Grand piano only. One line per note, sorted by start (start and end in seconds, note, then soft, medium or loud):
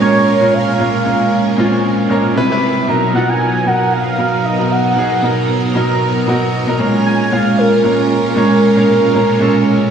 0.00 0.40 A#2 medium
0.00 0.41 G#3 medium
0.00 0.02 C#4 medium
0.00 0.33 C#4 medium
0.00 0.03 A#4 loud
0.00 0.34 A#4 medium
0.00 2.38 C5 medium
0.00 2.38 C#5 medium
0.40 0.72 A#2 medium
0.40 0.72 G#3 medium
0.40 0.73 C#4 medium
0.40 0.73 A#4 medium
0.78 1.00 A#2 medium
0.78 1.01 G#3 medium
0.78 1.01 C#4 medium
0.78 1.02 A#4 medium
1.04 1.48 A#2 medium
1.04 1.48 G#3 medium
1.04 1.49 C#4 medium
1.04 1.49 A#4 medium
1.57 2.00 A#2 medium
1.57 2.00 G#3 medium
1.57 1.65 C4 medium
1.57 2.01 F4 loud
1.65 2.04 C#4 medium
2.09 2.35 A#2 medium
2.09 2.36 G#3 medium
2.09 2.36 C#4 medium
2.09 2.37 A#4 loud
2.35 2.47 C3 medium
2.35 2.47 G3 medium
2.35 2.48 E4 medium
2.35 2.48 B4 loud
2.49 2.80 C3 medium
2.49 2.81 G3 medium
2.49 2.81 E4 medium
2.49 2.82 B4 loud
2.87 3.09 B2 medium
2.87 3.09 F#3 medium
2.87 3.10 D#4 medium
2.87 3.10 A#4 loud
3.13 3.56 B2 medium
3.13 3.57 F#3 medium
3.13 3.57 D#4 medium
3.13 3.58 F4 medium
3.65 4.08 B2 medium
3.65 4.09 F#3 medium
3.65 4.09 D#4 medium
3.65 4.10 A#4 medium
4.17 4.50 B2 medium
4.17 4.50 F#3 medium
4.17 4.51 D#4 medium
4.17 4.51 A#4 medium
4.58 4.89 B2 medium
4.58 4.90 F#3 medium
4.58 4.90 D#4 medium
4.58 4.91 A#4 medium
4.96 5.18 B2 medium
4.96 5.18 F#3 medium
4.96 5.18 D#4 medium
4.96 5.19 G#4 medium
5.22 5.65 B2 medium
5.22 5.66 F#3 medium
5.22 5.66 D#4 medium
5.22 5.66 A#4 medium
5.74 6.17 B2 medium
5.74 6.18 F#3 medium
5.74 6.18 D#4 medium
5.74 6.19 A#4 loud
6.26 6.58 B2 medium
6.26 6.59 F#3 medium
6.26 6.59 D#4 medium
6.26 6.60 F#4 loud
6.66 6.79 B2 medium
6.66 6.79 F#3 medium
6.66 6.80 D#4 medium
6.66 6.79 A#4 loud
6.78 7.22 A#2 medium
6.78 7.22 G#3 medium
6.78 7.22 C#4 medium
6.78 7.23 A#4 loud
7.30 7.74 A#2 medium
7.30 7.74 G#3 medium
7.30 7.75 C#4 medium
7.30 7.75 F4 medium
7.83 8.26 A#2 medium
7.83 8.26 G#3 medium
7.83 8.27 C#4 medium
7.83 8.27 A#4 medium
8.35 8.67 A#2 loud
8.35 8.68 G#3 medium
8.35 8.68 C#4 medium
8.35 8.69 C#5 loud
8.75 9.07 A#2 medium
8.75 9.07 G#3 medium
8.75 9.07 C#4 medium
8.75 9.08 A#4 loud
9.13 9.35 A#2 medium
9.13 9.35 G#3 medium
9.13 9.36 C#4 medium
9.13 9.36 A#4 loud
9.39 9.82 A#2 medium
9.39 9.83 G#3 medium
9.39 9.83 C#4 medium
9.39 9.48 A4 medium
9.48 9.87 A#4 loud